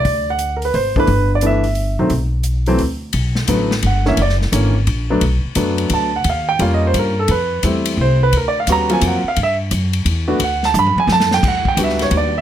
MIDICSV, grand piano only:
0, 0, Header, 1, 2, 480
1, 0, Start_track
1, 0, Tempo, 345026
1, 65, Time_signature, 3, 2, 24, 8
1, 17266, End_track
2, 0, Start_track
2, 0, Title_t, "Grand piano"
2, 0, Program_c, 0, 0
2, 0, Note_on_c, 0, 74, 93
2, 417, Note_off_c, 0, 74, 0
2, 421, Note_on_c, 0, 78, 88
2, 775, Note_off_c, 0, 78, 0
2, 787, Note_on_c, 0, 70, 52
2, 862, Note_off_c, 0, 70, 0
2, 903, Note_on_c, 0, 71, 76
2, 1036, Note_on_c, 0, 72, 79
2, 1038, Note_off_c, 0, 71, 0
2, 1341, Note_on_c, 0, 52, 65
2, 1347, Note_on_c, 0, 59, 58
2, 1350, Note_on_c, 0, 62, 70
2, 1352, Note_on_c, 0, 57, 60
2, 1353, Note_off_c, 0, 72, 0
2, 1385, Note_on_c, 0, 71, 92
2, 1490, Note_off_c, 0, 52, 0
2, 1493, Note_off_c, 0, 59, 0
2, 1494, Note_off_c, 0, 62, 0
2, 1496, Note_off_c, 0, 57, 0
2, 1810, Note_off_c, 0, 71, 0
2, 1882, Note_on_c, 0, 74, 71
2, 1976, Note_on_c, 0, 52, 57
2, 1980, Note_on_c, 0, 57, 51
2, 1983, Note_on_c, 0, 59, 53
2, 1989, Note_on_c, 0, 62, 64
2, 2021, Note_off_c, 0, 74, 0
2, 2035, Note_on_c, 0, 76, 81
2, 2262, Note_off_c, 0, 52, 0
2, 2264, Note_off_c, 0, 57, 0
2, 2266, Note_off_c, 0, 59, 0
2, 2269, Note_off_c, 0, 62, 0
2, 2767, Note_on_c, 0, 51, 62
2, 2769, Note_on_c, 0, 54, 57
2, 2776, Note_on_c, 0, 60, 64
2, 2777, Note_on_c, 0, 57, 55
2, 2914, Note_off_c, 0, 76, 0
2, 2923, Note_off_c, 0, 51, 0
2, 2924, Note_off_c, 0, 54, 0
2, 2928, Note_off_c, 0, 57, 0
2, 2928, Note_off_c, 0, 60, 0
2, 3719, Note_on_c, 0, 54, 61
2, 3723, Note_on_c, 0, 52, 71
2, 3723, Note_on_c, 0, 57, 67
2, 3729, Note_on_c, 0, 60, 77
2, 3879, Note_off_c, 0, 54, 0
2, 3881, Note_off_c, 0, 52, 0
2, 3881, Note_off_c, 0, 57, 0
2, 3884, Note_off_c, 0, 60, 0
2, 4845, Note_on_c, 0, 54, 52
2, 4847, Note_on_c, 0, 57, 53
2, 4848, Note_on_c, 0, 50, 57
2, 4856, Note_on_c, 0, 59, 69
2, 5137, Note_off_c, 0, 54, 0
2, 5138, Note_off_c, 0, 57, 0
2, 5139, Note_off_c, 0, 50, 0
2, 5143, Note_off_c, 0, 59, 0
2, 5378, Note_on_c, 0, 78, 77
2, 5645, Note_on_c, 0, 50, 64
2, 5645, Note_on_c, 0, 58, 58
2, 5651, Note_on_c, 0, 52, 58
2, 5651, Note_on_c, 0, 61, 69
2, 5666, Note_off_c, 0, 78, 0
2, 5679, Note_on_c, 0, 76, 80
2, 5802, Note_off_c, 0, 50, 0
2, 5803, Note_off_c, 0, 58, 0
2, 5805, Note_off_c, 0, 52, 0
2, 5806, Note_off_c, 0, 61, 0
2, 5831, Note_off_c, 0, 76, 0
2, 5867, Note_on_c, 0, 74, 77
2, 6043, Note_off_c, 0, 74, 0
2, 6288, Note_on_c, 0, 50, 54
2, 6291, Note_on_c, 0, 52, 49
2, 6295, Note_on_c, 0, 58, 48
2, 6299, Note_on_c, 0, 61, 61
2, 6579, Note_off_c, 0, 50, 0
2, 6581, Note_off_c, 0, 52, 0
2, 6583, Note_off_c, 0, 58, 0
2, 6585, Note_off_c, 0, 61, 0
2, 7099, Note_on_c, 0, 59, 64
2, 7105, Note_on_c, 0, 57, 62
2, 7106, Note_on_c, 0, 54, 65
2, 7113, Note_on_c, 0, 62, 73
2, 7250, Note_off_c, 0, 59, 0
2, 7253, Note_off_c, 0, 54, 0
2, 7253, Note_off_c, 0, 57, 0
2, 7257, Note_off_c, 0, 62, 0
2, 7735, Note_on_c, 0, 54, 57
2, 7739, Note_on_c, 0, 57, 53
2, 7739, Note_on_c, 0, 59, 48
2, 7747, Note_on_c, 0, 62, 62
2, 8259, Note_on_c, 0, 81, 81
2, 8472, Note_off_c, 0, 54, 0
2, 8474, Note_off_c, 0, 57, 0
2, 8474, Note_off_c, 0, 59, 0
2, 8478, Note_off_c, 0, 62, 0
2, 8548, Note_off_c, 0, 81, 0
2, 8570, Note_on_c, 0, 78, 78
2, 8718, Note_off_c, 0, 78, 0
2, 8759, Note_on_c, 0, 77, 75
2, 9024, Note_on_c, 0, 79, 93
2, 9038, Note_off_c, 0, 77, 0
2, 9178, Note_on_c, 0, 55, 55
2, 9180, Note_on_c, 0, 58, 54
2, 9184, Note_off_c, 0, 79, 0
2, 9184, Note_on_c, 0, 61, 55
2, 9184, Note_on_c, 0, 65, 65
2, 9209, Note_on_c, 0, 77, 72
2, 9354, Note_off_c, 0, 77, 0
2, 9377, Note_on_c, 0, 75, 66
2, 9518, Note_off_c, 0, 75, 0
2, 9560, Note_on_c, 0, 72, 72
2, 9690, Note_off_c, 0, 72, 0
2, 9727, Note_on_c, 0, 70, 72
2, 9914, Note_off_c, 0, 55, 0
2, 9915, Note_off_c, 0, 58, 0
2, 9917, Note_off_c, 0, 61, 0
2, 9917, Note_off_c, 0, 65, 0
2, 10002, Note_off_c, 0, 70, 0
2, 10008, Note_on_c, 0, 69, 78
2, 10157, Note_off_c, 0, 69, 0
2, 10171, Note_on_c, 0, 71, 74
2, 10607, Note_off_c, 0, 71, 0
2, 10632, Note_on_c, 0, 57, 45
2, 10633, Note_on_c, 0, 55, 52
2, 10634, Note_on_c, 0, 60, 45
2, 10645, Note_on_c, 0, 64, 56
2, 11146, Note_on_c, 0, 72, 80
2, 11361, Note_off_c, 0, 57, 0
2, 11362, Note_off_c, 0, 55, 0
2, 11362, Note_off_c, 0, 60, 0
2, 11368, Note_off_c, 0, 64, 0
2, 11432, Note_off_c, 0, 72, 0
2, 11451, Note_on_c, 0, 71, 82
2, 11599, Note_off_c, 0, 71, 0
2, 11645, Note_on_c, 0, 70, 68
2, 11773, Note_off_c, 0, 70, 0
2, 11798, Note_on_c, 0, 74, 78
2, 11930, Note_off_c, 0, 74, 0
2, 11962, Note_on_c, 0, 77, 79
2, 12090, Note_on_c, 0, 66, 62
2, 12092, Note_off_c, 0, 77, 0
2, 12093, Note_on_c, 0, 55, 53
2, 12093, Note_on_c, 0, 59, 53
2, 12095, Note_on_c, 0, 61, 48
2, 12135, Note_on_c, 0, 82, 102
2, 12362, Note_off_c, 0, 66, 0
2, 12363, Note_off_c, 0, 55, 0
2, 12363, Note_off_c, 0, 59, 0
2, 12364, Note_off_c, 0, 61, 0
2, 12377, Note_on_c, 0, 54, 60
2, 12378, Note_on_c, 0, 58, 54
2, 12385, Note_on_c, 0, 60, 51
2, 12386, Note_on_c, 0, 65, 64
2, 12407, Note_off_c, 0, 82, 0
2, 12427, Note_on_c, 0, 80, 85
2, 12568, Note_off_c, 0, 80, 0
2, 12624, Note_on_c, 0, 78, 74
2, 12797, Note_off_c, 0, 54, 0
2, 12798, Note_off_c, 0, 58, 0
2, 12801, Note_off_c, 0, 60, 0
2, 12802, Note_off_c, 0, 65, 0
2, 12892, Note_off_c, 0, 78, 0
2, 12913, Note_on_c, 0, 77, 86
2, 13050, Note_off_c, 0, 77, 0
2, 13122, Note_on_c, 0, 76, 96
2, 13282, Note_off_c, 0, 76, 0
2, 14296, Note_on_c, 0, 57, 63
2, 14298, Note_on_c, 0, 66, 72
2, 14299, Note_on_c, 0, 59, 54
2, 14300, Note_on_c, 0, 62, 57
2, 14449, Note_off_c, 0, 57, 0
2, 14451, Note_off_c, 0, 59, 0
2, 14451, Note_off_c, 0, 66, 0
2, 14452, Note_off_c, 0, 62, 0
2, 14525, Note_on_c, 0, 78, 87
2, 14802, Note_off_c, 0, 78, 0
2, 14820, Note_on_c, 0, 81, 93
2, 14964, Note_off_c, 0, 81, 0
2, 15009, Note_on_c, 0, 83, 105
2, 15284, Note_off_c, 0, 83, 0
2, 15298, Note_on_c, 0, 80, 94
2, 15443, Note_off_c, 0, 80, 0
2, 15477, Note_on_c, 0, 81, 106
2, 15758, Note_off_c, 0, 81, 0
2, 15777, Note_on_c, 0, 79, 89
2, 15922, Note_off_c, 0, 79, 0
2, 15968, Note_on_c, 0, 78, 89
2, 16244, Note_off_c, 0, 78, 0
2, 16255, Note_on_c, 0, 79, 82
2, 16386, Note_on_c, 0, 55, 50
2, 16389, Note_on_c, 0, 59, 44
2, 16389, Note_on_c, 0, 62, 48
2, 16396, Note_on_c, 0, 66, 55
2, 16401, Note_off_c, 0, 79, 0
2, 16464, Note_on_c, 0, 76, 69
2, 16728, Note_on_c, 0, 73, 77
2, 16732, Note_off_c, 0, 76, 0
2, 16878, Note_off_c, 0, 73, 0
2, 16935, Note_on_c, 0, 74, 81
2, 17118, Note_off_c, 0, 55, 0
2, 17120, Note_off_c, 0, 59, 0
2, 17120, Note_off_c, 0, 62, 0
2, 17123, Note_off_c, 0, 66, 0
2, 17207, Note_off_c, 0, 74, 0
2, 17219, Note_on_c, 0, 76, 80
2, 17266, Note_off_c, 0, 76, 0
2, 17266, End_track
0, 0, End_of_file